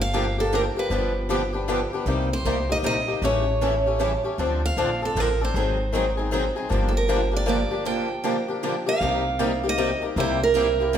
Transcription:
Already playing: upright bass G1
0.01 steel-string acoustic guitar F5
0.13 steel-string acoustic guitar D3 F3 A#3 D4 G4
0.38 steel-string acoustic guitar A#3 D4 G4 A4
0.53 steel-string acoustic guitar D3 F3 A#3 D4 G4 A#4
0.77 steel-string acoustic guitar A#3 D4 G4 B4
0.90 upright bass G1, steel-string acoustic guitar D3 F3 B3 D4 G4
1.29 steel-string acoustic guitar D3 F3 B3 D4 G4
1.53 steel-string acoustic guitar B3 D4 G4
1.68 steel-string acoustic guitar D3 F3 B3 D4 G4
1.93 steel-string acoustic guitar B3 D4 G4
2.06 upright bass C2, steel-string acoustic guitar C3 G3 A#3 D#4 G4
2.33 steel-string acoustic guitar C5
2.45 upright bass C2, steel-string acoustic guitar C3 G3 A#3 D#4 G4
2.69 steel-string acoustic guitar A#3 D#4 G4 D#5
2.83 upright bass A#1, steel-string acoustic guitar C3 G3 A#3 D#4 G4 D#5
3.08 steel-string acoustic guitar A#3 D#4 G4
3.22 upright bass A1, steel-string acoustic guitar C#3 E3 G3 A3 C#4 E4 G4 A4 C#5
3.61 steel-string acoustic guitar C#3 E3 G3 A3 C#4 E4 G4 A4
3.86 steel-string acoustic guitar A3 C#4 G4
3.99 steel-string acoustic guitar C#3 E3 G3 A3 C#4 E4 G4 A4
4.24 steel-string acoustic guitar A3 C#4 G4
4.38 upright bass D2, steel-string acoustic guitar D3 F3 C4 D4 A4
4.66 steel-string acoustic guitar F5
4.77 upright bass A#1, steel-string acoustic guitar D3 F3 C4 D4 A4
5.02 steel-string acoustic guitar C4 D4 A4
5.15 upright bass A1, steel-string acoustic guitar D3 F3 C4 D4 A4
5.20 steel-string acoustic guitar A#4
5.41 steel-string acoustic guitar C4 D4 A4 C5
5.54 upright bass G#1, steel-string acoustic guitar D#3 F#3 C4 D#4 G#4
5.93 steel-string acoustic guitar D#3 F#3 C4 D#4 G#4
6.17 steel-string acoustic guitar C4 D#4 G#4
6.31 steel-string acoustic guitar D#3 F#3 C4 D#4 G#4
6.56 steel-string acoustic guitar C4 D#4 G#4
6.69 upright bass G1, steel-string acoustic guitar D3 F3 A#3 D4 G4
6.89 steel-string acoustic guitar A4
6.97 steel-string acoustic guitar A#4
7.08 steel-string acoustic guitar D3 F3 A#3 D4 G4
7.32 steel-string acoustic guitar A#3 D4 G4
7.37 steel-string acoustic guitar D5
7.46 steel-string acoustic guitar D3 F3 A#3 D4 G4 D5
7.71 steel-string acoustic guitar A#3 D4 G4
7.86 steel-string acoustic guitar D3 F3 A#3 D4 G4 G5
8.24 steel-string acoustic guitar D3 F3 A#3 D4 G4
8.48 steel-string acoustic guitar A#3 D4 G4
8.63 steel-string acoustic guitar D3 F3 A#3 D4 G4
8.86 steel-string acoustic guitar A#3 D4 G4 F5
9.01 upright bass C2, steel-string acoustic guitar C3 G3 A#3 D#4 G4
9.39 steel-string acoustic guitar C3 G3 A#3 D#4 G4
9.64 steel-string acoustic guitar A#3 D#4 G4
9.69 steel-string acoustic guitar D#5
9.78 steel-string acoustic guitar C3 G3 A#3 D#4 G4
10.02 steel-string acoustic guitar A#3 D#4 G4
10.16 upright bass C2, steel-string acoustic guitar C3 G3 A#3 E4 G4 C5
10.43 steel-string acoustic guitar A#4
10.55 steel-string acoustic guitar C3 G3 A#3 E4 G4
10.80 steel-string acoustic guitar A#3 E4 G4
10.94 steel-string acoustic guitar C3 G3 A#3 E4 G4

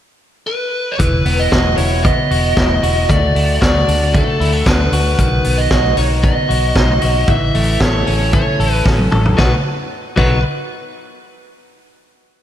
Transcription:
0.47 lead electric guitar B4
0.91 lead electric guitar C#5
0.98 fingered electric bass E1, clean electric guitar E3, lead electric guitar B4, kick, closed hi-hat
1.25 fingered electric bass E1, clean electric guitar B3, open hi-hat
1.39 lead electric guitar D#5
1.52 fingered electric bass E1, clean electric guitar F#4, kick, snare, closed hi-hat
1.77 fingered electric bass E1, clean electric guitar E4, lead electric guitar C#5, open hi-hat
2.04 clean electric guitar B3, lead electric guitar D#5, kick, closed hi-hat
2.31 fingered electric bass E1, clean electric guitar F#4, open hi-hat
2.57 fingered electric bass E1, clean electric guitar E4, kick, snare, closed hi-hat
2.83 fingered electric bass E1, clean electric guitar F#4, open hi-hat
3.09 fingered electric bass D2, clean electric guitar A3, lead electric guitar D5, kick, closed hi-hat
3.35 fingered electric bass D2, clean electric guitar A3, open hi-hat
3.61 fingered electric bass D2, clean electric guitar F#4, lead electric guitar D5, kick, snare, closed hi-hat
3.87 fingered electric bass D2, clean electric guitar D4, open hi-hat
4.14 clean electric guitar A3, lead electric guitar A4, kick, closed hi-hat
4.40 fingered electric bass D2, clean electric guitar E4, open hi-hat
4.53 clean electric guitar F#4
4.66 fingered electric bass D2, clean electric guitar D4, lead electric guitar B4, kick, snare, closed hi-hat
4.92 fingered electric bass D2, clean electric guitar F#4, open hi-hat
5.19 fingered electric bass B1, clean electric guitar D#3, lead electric guitar B4, kick, closed hi-hat
5.44 fingered electric bass B1, clean electric guitar B3, open hi-hat
5.58 lead electric guitar D#5
5.71 fingered electric bass B1, clean electric guitar F#4, kick, snare, closed hi-hat
5.97 fingered electric bass B1, clean electric guitar D#4, lead electric guitar C#5, open hi-hat
6.24 clean electric guitar B3, lead electric guitar D#5, kick, closed hi-hat
6.49 fingered electric bass B1, clean electric guitar F#4, open hi-hat
6.76 fingered electric bass B1, clean electric guitar D#4, kick, snare, closed hi-hat
7.02 fingered electric bass B1, clean electric guitar F#4, open hi-hat
7.28 fingered electric bass A1, clean electric guitar E3, lead electric guitar E5, kick, closed hi-hat
7.55 fingered electric bass A1, clean electric guitar A3, open hi-hat
7.80 fingered electric bass A1, clean electric guitar A4, lead electric guitar C#5, kick, snare, closed hi-hat
8.06 fingered electric bass A1, clean electric guitar C#4, open hi-hat
8.33 clean electric guitar A3, lead electric guitar C#5, kick, closed hi-hat
8.60 fingered electric bass A1, clean electric guitar A4, open hi-hat
8.85 clean electric guitar C#4, kick, snare
8.99 high tom
9.12 fingered electric bass A1, clean electric guitar A4, mid tom
9.25 floor tom
9.37 fingered electric bass B1, clean electric guitar F#3 B3 D#4 F#4, lead electric guitar B4, kick, snare
10.16 fingered electric bass B1, clean electric guitar F#3 B3 D#4 F#4, lead electric guitar B4, kick, crash

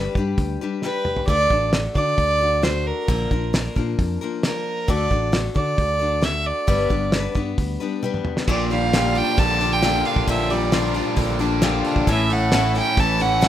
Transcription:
Already playing: steel-string acoustic guitar G3 D4 G4 B4, fiddle B4
0.15 fingered electric bass G2, steel-string acoustic guitar G3 D4 G4 B4, kick
0.38 fingered electric bass D2, kick, open hi-hat
0.61 steel-string acoustic guitar G3 D4 G4 B4
0.82 steel-string acoustic guitar G3 D4 G4 B4, fiddle B4, snare
1.05 mid tom
1.16 floor tom
1.27 fingered electric bass D2, steel-string acoustic guitar D3 A3 D4 F#4 A4, fiddle D5, kick, open hi-hat
1.50 fingered electric bass A1, steel-string acoustic guitar D4 F#4 A4, kick
1.73 steel-string acoustic guitar A3 D4 F#4 A4, snare, open hi-hat
1.94 fingered electric bass D3, steel-string acoustic guitar D4 F#4 A4, fiddle D5, kick
2.18 fingered electric bass D2, kick, open hi-hat
2.40 steel-string acoustic guitar D4 F#4 A4
2.63 steel-string acoustic guitar A3 D4 F#4 A4, fiddle C5, snare, open hi-hat
2.86 fiddle A#4
3.08 fingered electric bass A#1, steel-string acoustic guitar A#2 D3 F3 A#3 D4 A#4, kick, open hi-hat
3.31 fingered electric bass A#1, steel-string acoustic guitar F3 A#3 D4 A#4, kick
3.53 steel-string acoustic guitar F3 A#3 D4 A#4, snare, open hi-hat
3.76 fingered electric bass A#2, steel-string acoustic guitar F3 A#3 D4 A#4, kick
3.99 fingered electric bass F2, kick, open hi-hat
4.21 steel-string acoustic guitar F3 A#3 D4 A#4
4.43 steel-string acoustic guitar F3 A#3 D4 A#4, fiddle A#4, snare, open hi-hat
4.88 fingered electric bass D2, steel-string acoustic guitar D3 A3 D4 F#4 A4, fiddle D5, kick, open hi-hat
5.10 fingered electric bass A1, steel-string acoustic guitar D4 F#4 A4, kick
5.32 steel-string acoustic guitar A3 D4 F#4 A4, snare, open hi-hat
5.54 fingered electric bass D3, steel-string acoustic guitar D4 F#4 A4, fiddle D5, kick
5.78 fingered electric bass D2, kick, open hi-hat
5.99 steel-string acoustic guitar D4 F#4 A4
6.22 steel-string acoustic guitar A3 D4 F#4 A4, fiddle E5, snare, open hi-hat
6.46 fiddle D5
6.67 fingered electric bass G1, steel-string acoustic guitar G2 D3 G3 B3 D4 B4, kick, open hi-hat
6.89 fingered electric bass G1, steel-string acoustic guitar G3 B3 D4 B4, kick
7.12 steel-string acoustic guitar G3 B3 D4 B4, snare, open hi-hat
7.35 fingered electric bass G2, steel-string acoustic guitar G3 B3 D4 B4, kick
7.58 fingered electric bass D2, kick, open hi-hat
7.80 steel-string acoustic guitar G3 B3 D4 B4
8.03 steel-string acoustic guitar G3 B3 D4 B4, high tom
8.14 mid tom
8.25 mid tom
8.37 snare
8.47 fingered electric bass A#1, steel-string acoustic guitar A#2 D3 F3 A#3 D4 G4, fiddle D5, kick, crash
8.70 steel-string acoustic guitar F3 A#3 D4 G4, overdriven electric guitar G3, fiddle F5, open hi-hat
8.93 steel-string acoustic guitar A#2 D3 F3 A#3 D4 G4, overdriven electric guitar F4, snare, open hi-hat
9.15 steel-string acoustic guitar F3 A#3 D4 G4, fiddle G5, open hi-hat
9.37 fingered electric bass A#1, overdriven electric guitar D3, steel-string acoustic guitar F3 A#3 D4 G4, fiddle A5, kick, open hi-hat
9.60 steel-string acoustic guitar F3 A#3 D4 G4, open hi-hat
9.73 fiddle G5
9.82 steel-string acoustic guitar A#2 D3 F3 A#3 D4 G4, overdriven electric guitar F4, snare, open hi-hat
10.05 overdriven electric guitar D4, fiddle F5, open hi-hat
10.16 fingered electric bass A#1, kick
10.27 fingered electric bass A#1, steel-string acoustic guitar A#2 D3 F3 A#3 D4 G4, fiddle E5, kick, open hi-hat
10.50 steel-string acoustic guitar F3 A#3 D4 G4, overdriven electric guitar G3, fiddle D5, open hi-hat
10.72 steel-string acoustic guitar A#2 D3 F3 A#3 D4 G4, overdriven electric guitar F4, snare, open hi-hat
10.94 steel-string acoustic guitar F3 A#3 D4 G4, open hi-hat
11.16 fingered electric bass A#1, overdriven electric guitar D3, steel-string acoustic guitar F3 A#3 D4 G4, kick, open hi-hat
11.39 steel-string acoustic guitar F3 A#3 D4 G4, open hi-hat
11.62 steel-string acoustic guitar A#2 D3 F3 A#3 D4 G4, overdriven electric guitar F4, snare, open hi-hat
11.85 overdriven electric guitar D4, open hi-hat
11.96 fingered electric bass A#1, kick
12.07 fingered electric bass A1, steel-string acoustic guitar A2 E3 A3 C#4 E4 A4, fiddle E5, kick, open hi-hat
12.30 steel-string acoustic guitar A3 C#4 E4 A4, fiddle F#5, open hi-hat
12.52 steel-string acoustic guitar A2 E3 A3 C#4 E4 A4, snare, open hi-hat
12.75 steel-string acoustic guitar A3 C#4 E4 A4, fiddle G5, open hi-hat
12.97 fingered electric bass A1, overdriven electric guitar E3, steel-string acoustic guitar A3 C#4 E4 A4, fiddle A5, kick, open hi-hat
13.19 steel-string acoustic guitar A3 C#4 E4 A4, fiddle F#5, open hi-hat
13.41 steel-string acoustic guitar A2 E3 A3 C#4 E4 A4, snare, open hi-hat

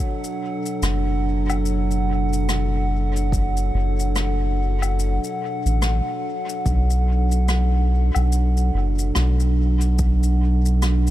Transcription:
Already playing: ambient pad B2 F#3 D4 A4 F#5
0.24 shaker
0.66 shaker
0.82 sub bass F#1, cross-stick, shaker
1.50 low woodblock, shaker
1.66 shaker
1.91 shaker
2.33 shaker
2.49 cross-stick, shaker
3.16 shaker
3.32 kick, shaker
3.57 shaker
3.74 sub bass F#1
3.99 shaker
4.16 cross-stick, shaker
4.82 low woodblock, shaker
4.99 shaker
5.24 shaker
5.66 sub bass A1, shaker
5.82 cross-stick, shaker
6.49 shaker
6.66 sub bass B1, kick, shaker
6.90 shaker
7.32 shaker
7.48 cross-stick, shaker
8.15 sub bass B1, low woodblock, shaker
8.32 shaker
8.57 shaker
8.74 sub bass F#1
8.99 shaker
9.15 sub bass B1, cross-stick, shaker
9.40 shaker
9.81 shaker
9.98 kick, shaker
10.23 shaker
10.66 shaker
10.82 cross-stick, shaker
11.07 shaker

